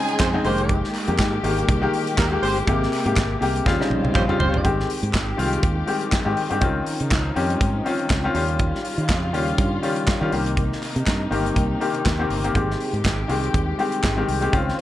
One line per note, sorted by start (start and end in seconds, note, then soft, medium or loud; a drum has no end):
0.00 0.33 C#3 medium
0.00 0.41 C#3 medium
0.00 0.33 G#3 medium
0.00 2.63 G#3 medium
0.00 0.34 C4 medium
0.00 0.43 C4 medium
0.00 0.34 D#4 loud
0.00 0.43 D#4 medium
0.00 0.47 F4 medium
0.00 0.41 G#4 loud
0.00 0.41 G#5 loud
0.09 closed hi-hat soft
0.19 0.38 F2 medium
0.19 0.29 G#3 medium
0.19 0.29 C4 medium
0.19 0.29 F4 medium
0.19 0.29 C5 medium
0.19 kick loud
0.19 snare loud
0.19 clap loud
0.19 closed hi-hat medium
0.33 0.44 C#3 medium
0.33 0.43 G#3 medium
0.33 0.45 C4 medium
0.33 0.45 D#4 loud
0.44 0.81 F1 loud
0.44 2.64 D#3 medium
0.44 0.94 D#3 medium
0.44 0.94 G#3 medium
0.44 0.78 G#3 loud
0.44 3.62 A#3 medium
0.44 0.94 A#3 medium
0.44 0.78 C4 medium
0.44 3.62 G4 medium
0.44 0.78 G4 loud
0.44 0.95 G4 medium
0.44 0.78 C5 loud
0.44 open hi-hat medium
0.58 closed hi-hat medium
0.69 kick loud
0.69 closed hi-hat soft
0.84 snare soft
0.94 clap medium
0.94 open hi-hat medium
1.08 1.16 F2 loud
1.08 1.33 D#3 medium
1.08 1.33 G#3 medium
1.08 1.33 A#3 medium
1.08 1.34 G4 medium
1.08 closed hi-hat soft
1.18 1.37 G#2 medium
1.18 kick loud
1.18 snare loud
1.18 clap medium
1.18 clap loud
1.18 closed hi-hat medium
1.43 1.62 G#1 medium
1.43 1.69 D#3 medium
1.43 1.69 G#3 medium
1.43 1.69 A#3 medium
1.43 1.70 G4 loud
1.43 open hi-hat medium
1.59 closed hi-hat soft
1.69 1.87 C2 loud
1.69 kick loud
1.69 closed hi-hat medium
1.82 2.14 D#3 loud
1.82 2.15 G#3 medium
1.82 2.15 A#3 medium
1.82 2.15 G4 loud
1.94 open hi-hat medium
2.07 closed hi-hat medium
2.17 2.36 D#2 medium
2.17 2.27 G3 medium
2.17 2.27 A#3 medium
2.17 2.27 D#4 medium
2.17 2.27 A#4 medium
2.17 kick loud
2.17 snare loud
2.17 clap loud
2.17 closed hi-hat medium
2.31 2.56 D#3 medium
2.31 2.57 G#3 medium
2.31 2.57 A#3 medium
2.31 2.57 G4 medium
2.42 2.61 G1 medium
2.42 2.59 G#3 medium
2.42 2.58 C4 medium
2.42 2.59 G4 loud
2.42 2.58 C5 loud
2.42 open hi-hat medium
2.57 closed hi-hat soft
2.67 2.86 G#1 loud
2.67 2.93 C3 medium
2.67 3.65 C3 medium
2.67 2.93 G#3 medium
2.67 2.93 A#3 medium
2.67 2.93 G4 medium
2.67 kick loud
2.67 closed hi-hat medium
2.83 snare soft
2.93 clap medium
2.93 open hi-hat medium
3.05 3.14 G#2 loud
3.05 3.31 C3 medium
3.05 3.31 G#3 medium
3.05 3.31 A#3 medium
3.05 3.31 G4 medium
3.05 closed hi-hat soft
3.16 3.35 G#1 loud
3.16 kick loud
3.16 snare loud
3.16 clap medium
3.16 clap loud
3.16 closed hi-hat medium
3.41 3.60 C2 medium
3.41 3.65 C3 medium
3.41 3.66 G#3 medium
3.41 3.66 A#3 medium
3.41 3.66 G4 loud
3.41 open hi-hat medium
3.56 closed hi-hat soft
3.66 3.76 D#2 loud
3.66 3.77 C#3 loud
3.66 4.64 C#3 medium
3.66 4.64 G3 medium
3.66 3.77 G3 medium
3.66 4.64 C4 medium
3.66 3.77 C4 medium
3.66 4.64 F4 medium
3.66 3.77 F4 loud
3.66 kick loud
3.66 snare medium
3.80 4.12 C#3 loud
3.80 4.13 G3 medium
3.80 4.13 C4 medium
3.80 4.13 D#4 medium
3.80 snare medium
3.90 4.01 A#1 medium
3.90 high tom medium
4.04 4.12 C2 medium
4.04 high tom medium
4.15 4.25 A#1 medium
4.15 4.24 G3 medium
4.15 4.24 C4 medium
4.15 4.24 F4 medium
4.15 4.24 C5 medium
4.15 kick loud
4.15 clap medium
4.15 mid tom medium
4.28 4.54 C#3 medium
4.28 4.54 G3 medium
4.28 4.54 C4 medium
4.28 4.54 F4 loud
4.28 mid tom medium
4.39 4.50 F#1 medium
4.39 4.60 G3 medium
4.39 4.61 C4 medium
4.39 4.61 F4 medium
4.39 4.61 C5 loud
4.39 floor tom loud
4.54 4.62 G1 medium
4.54 floor tom loud
4.64 4.83 G#1 loud
4.64 5.15 D#3 medium
4.64 8.32 D#3 medium
4.64 5.15 G#3 medium
4.64 6.61 G#3 medium
4.64 5.15 C4 medium
4.64 5.16 G4 loud
4.64 6.61 G4 medium
4.64 kick loud
4.64 closed hi-hat medium
4.80 snare soft
4.90 open hi-hat medium
5.03 5.11 G#2 loud
5.03 closed hi-hat soft
5.13 5.32 G#1 medium
5.13 kick loud
5.13 snare loud
5.13 clap medium
5.13 closed hi-hat medium
5.37 5.57 C2 medium
5.37 5.73 D#3 medium
5.37 5.73 G#3 medium
5.37 5.73 C4 medium
5.37 5.74 F4 medium
5.37 open hi-hat medium
5.53 closed hi-hat soft
5.63 5.81 D#2 loud
5.63 kick loud
5.63 closed hi-hat medium
5.87 6.13 D#3 medium
5.87 6.13 G#3 medium
5.87 6.13 C4 medium
5.87 6.14 G4 medium
5.87 open hi-hat medium
6.01 closed hi-hat soft
6.12 muted fingered electric bass stroke soft
6.12 kick loud
6.12 snare loud
6.12 clap medium
6.12 closed hi-hat medium
6.25 6.34 G#2 medium
6.25 6.42 D#3 medium
6.25 6.42 G#3 medium
6.25 6.42 C4 medium
6.25 6.42 G4 medium
6.37 open hi-hat medium
6.50 6.63 G2 medium
6.50 6.58 D#3 medium
6.50 6.58 G#3 medium
6.50 6.58 C4 medium
6.50 6.59 G4 medium
6.50 closed hi-hat soft
6.61 6.80 C#2 medium
6.61 7.12 D#3 medium
6.61 8.34 F3 medium
6.61 7.13 C4 medium
6.61 7.13 C#4 medium
6.61 8.34 D#4 medium
6.61 7.13 F4 medium
6.61 kick loud
6.61 closed hi-hat medium
6.86 open hi-hat medium
7.00 7.09 C#3 loud
7.00 closed hi-hat soft
7.10 7.30 C#2 medium
7.10 kick loud
7.10 snare loud
7.10 clap medium
7.10 clap loud
7.10 closed hi-hat medium
7.35 7.55 F2 medium
7.35 7.71 D#3 medium
7.35 7.71 C4 medium
7.35 7.71 C#4 medium
7.35 7.72 G4 medium
7.35 open hi-hat medium
7.50 closed hi-hat soft
7.61 7.79 G#2 medium
7.61 kick loud
7.61 closed hi-hat medium
7.85 8.11 D#3 medium
7.85 8.11 C4 medium
7.85 8.11 C#4 medium
7.85 8.12 F4 medium
7.85 open hi-hat medium
7.99 closed hi-hat soft
8.09 8.29 C#2 medium
8.09 kick loud
8.09 snare loud
8.09 clap loud
8.09 clap medium
8.09 closed hi-hat medium
8.24 8.33 D#3 medium
8.24 8.35 C4 medium
8.24 8.34 C#4 medium
8.24 8.34 F4 medium
8.34 8.72 D#2 loud
8.34 10.31 C#3 medium
8.34 9.14 D#3 medium
8.34 9.15 G3 medium
8.34 10.31 G3 medium
8.34 9.15 C#4 medium
8.34 10.31 F4 medium
8.34 9.15 F4 medium
8.34 open hi-hat medium
8.49 closed hi-hat soft
8.59 kick loud
8.59 closed hi-hat medium
8.75 snare soft
8.85 open hi-hat medium
8.98 9.11 D#3 loud
8.98 closed hi-hat soft
9.09 9.33 F2 medium
9.09 kick loud
9.09 snare loud
9.09 clap medium
9.09 clap loud
9.09 closed hi-hat medium
9.33 9.52 D#2 medium
9.33 9.68 D#3 medium
9.33 9.69 G3 medium
9.33 9.69 C#4 medium
9.33 9.69 F4 medium
9.33 open hi-hat medium
9.48 closed hi-hat soft
9.58 9.77 G2 medium
9.58 kick loud
9.58 closed hi-hat medium
9.82 10.08 D#3 medium
9.82 10.09 G3 medium
9.82 10.09 C#4 medium
9.82 10.09 F4 medium
9.82 open hi-hat medium
9.96 closed hi-hat soft
10.07 muted fingered electric bass stroke soft
10.07 kick loud
10.07 snare loud
10.07 clap loud
10.07 clap medium
10.07 closed hi-hat medium
10.21 10.30 D#3 medium
10.21 10.33 G3 medium
10.21 10.33 C#4 medium
10.21 10.33 F4 medium
10.32 10.69 C2 medium
10.32 14.49 C3 medium
10.32 11.12 D#3 medium
10.32 11.12 A#3 medium
10.32 12.53 A#3 medium
10.32 11.12 C4 medium
10.32 12.53 D#4 medium
10.32 11.13 G4 medium
10.32 open hi-hat medium
10.46 closed hi-hat soft
10.57 kick medium
10.57 closed hi-hat medium
10.72 snare soft
10.82 clap medium
10.82 open hi-hat medium
10.96 11.04 C3 medium
10.96 closed hi-hat soft
11.06 11.25 G2 medium
11.06 kick loud
11.06 snare loud
11.06 clap loud
11.06 clap medium
11.06 closed hi-hat medium
11.31 11.50 G1 medium
11.31 11.66 D#3 medium
11.31 11.66 A#3 medium
11.31 11.67 C4 medium
11.31 11.67 G4 medium
11.31 open hi-hat medium
11.46 closed hi-hat soft
11.56 11.75 C2 loud
11.56 kick loud
11.56 closed hi-hat medium
11.80 12.06 D#3 medium
11.80 12.06 A#3 medium
11.80 12.07 C4 medium
11.80 12.07 G4 medium
11.80 open hi-hat medium
11.95 closed hi-hat soft
12.05 12.24 D#2 medium
12.05 kick loud
12.05 snare loud
12.05 clap medium
12.05 closed hi-hat medium
12.19 12.35 D#3 medium
12.19 12.36 A#3 medium
12.19 12.36 C4 medium
12.19 12.36 G4 medium
12.30 12.49 G1 medium
12.30 open hi-hat medium
12.44 12.52 D#3 medium
12.44 12.52 A#3 medium
12.44 12.52 C4 medium
12.44 12.53 G4 medium
12.44 closed hi-hat medium
12.55 12.74 G#1 loud
12.55 13.06 D#3 medium
12.55 13.06 G#3 medium
12.55 14.51 G#3 medium
12.55 13.06 C4 medium
12.55 13.07 G4 medium
12.55 14.51 G4 medium
12.55 kick medium
12.55 closed hi-hat medium
12.71 snare soft
12.80 open hi-hat medium
12.93 13.02 G#2 medium
12.93 closed hi-hat soft
13.04 13.23 G#1 medium
13.04 kick loud
13.04 snare loud
13.04 clap medium
13.04 closed hi-hat medium
13.28 13.48 C2 medium
13.28 13.64 D#3 medium
13.28 13.64 G#3 medium
13.28 13.64 C4 medium
13.28 13.65 G4 medium
13.28 open hi-hat medium
13.44 closed hi-hat soft
13.54 13.72 D#2 medium
13.54 kick loud
13.54 closed hi-hat medium
13.79 14.04 D#3 medium
13.79 14.04 G#3 medium
13.79 14.05 C4 medium
13.79 14.05 G4 medium
13.79 open hi-hat soft
13.92 closed hi-hat soft
14.03 14.22 G#1 medium
14.03 kick loud
14.03 snare loud
14.03 clap loud
14.03 clap medium
14.03 closed hi-hat medium
14.17 14.33 D#3 medium
14.17 14.33 G#3 medium
14.17 14.34 C4 medium
14.17 14.34 G4 medium
14.29 14.47 C2 medium
14.29 open hi-hat medium
14.41 14.49 D#3 medium
14.41 14.49 G#3 medium
14.41 14.49 C4 medium
14.41 14.50 G4 medium
14.41 closed hi-hat soft
14.52 14.71 C#2 loud
14.52 14.81 D#3 medium
14.52 14.81 C4 medium
14.52 14.81 C#4 medium
14.52 14.81 F4 medium
14.52 14.81 F4 loud
14.52 14.81 C5 medium
14.52 kick loud
14.52 closed hi-hat medium
14.69 snare soft